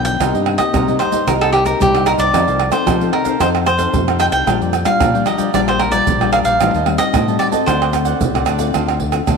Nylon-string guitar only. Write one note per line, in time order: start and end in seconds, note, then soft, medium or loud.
0.00 0.18 D3 medium
0.00 0.17 F3 medium
0.00 0.17 B3 medium
0.00 0.17 D4 medium
0.21 0.71 C3 medium
0.21 0.56 A#3 medium
0.21 0.56 D#4 medium
0.21 0.57 G4 medium
0.59 0.82 A#3 medium
0.59 0.82 D#4 medium
0.59 0.82 G4 medium
0.74 1.24 G2 medium
0.88 1.10 A#3 medium
0.88 1.10 D#4 medium
0.88 1.10 G4 medium
1.11 1.22 A#3 medium
1.11 1.22 D#4 medium
1.11 1.22 G4 medium
1.27 1.78 C3 medium
1.27 1.63 A#3 medium
1.27 1.63 D#4 medium
1.27 1.63 G4 medium
1.65 1.88 A#3 medium
1.65 1.89 D#4 medium
1.65 1.89 G4 medium
1.80 2.31 G2 medium
1.94 2.30 A#3 medium
1.94 2.30 D#4 medium
1.94 2.30 G4 medium
2.33 2.84 F3 medium
2.33 2.59 C4 medium
2.33 2.59 D#4 medium
2.33 2.59 A4 medium
2.72 2.95 C4 medium
2.72 2.95 D#4 medium
2.72 2.96 A4 medium
2.87 3.38 C3 medium
3.01 3.23 C4 medium
3.01 3.23 D#4 medium
3.01 3.24 A4 medium
3.25 3.35 C4 medium
3.25 3.35 D#4 medium
3.25 3.35 A4 medium
3.40 3.91 F3 medium
3.40 3.65 C4 medium
3.40 3.66 D#4 medium
3.40 3.66 A4 medium
3.78 4.02 C4 medium
3.78 4.02 D#4 medium
3.78 4.02 A4 medium
3.94 4.44 C3 medium
4.07 4.43 C4 medium
4.07 4.43 D#4 medium
4.07 4.43 A4 medium
4.47 4.98 A#2 medium
4.47 4.72 G3 medium
4.47 4.72 D4 medium
4.47 4.72 F4 medium
4.85 5.08 G3 medium
4.85 5.09 D4 medium
4.85 5.09 F4 medium
5.00 5.51 F3 medium
5.14 5.36 G3 medium
5.14 5.37 D4 medium
5.14 5.37 F4 medium
5.37 5.48 G3 medium
5.37 5.48 D4 medium
5.37 5.48 F4 medium
5.53 6.04 A#2 medium
5.53 5.89 G3 medium
5.53 5.89 D4 medium
5.53 5.89 F4 medium
5.91 6.15 G3 medium
5.91 6.15 D4 medium
5.91 6.15 F4 medium
6.06 6.57 F3 medium
6.20 6.56 G3 medium
6.20 6.56 D4 medium
6.20 6.57 F4 medium
6.60 7.11 A2 medium
6.60 6.76 G3 medium
6.60 6.76 C4 medium
6.60 6.76 D#4 medium
6.85 7.22 G3 medium
6.85 7.22 C4 medium
6.85 7.22 D#4 medium
7.13 7.64 A2 medium
7.27 7.50 G3 medium
7.27 7.50 C4 medium
7.27 7.50 D#4 medium
7.52 7.88 C4 medium
7.52 7.89 F#4 medium
7.52 7.89 A4 medium
7.67 8.18 D3 medium
7.92 8.29 C4 medium
7.92 8.29 F#4 medium
7.92 8.29 A4 medium
8.20 8.71 A2 medium
8.34 8.56 C4 medium
8.34 8.57 F#4 medium
8.34 8.57 A4 medium
8.58 8.95 C4 medium
8.58 8.95 F4 medium
8.58 8.96 A4 medium
8.73 9.24 D3 medium
9.11 9.22 C4 medium
9.11 9.22 F4 medium
9.11 9.22 A4 medium
9.27 9.37 A2 medium
9.27 9.37 C4 medium
9.27 9.37 F4 medium
9.27 9.37 A4 medium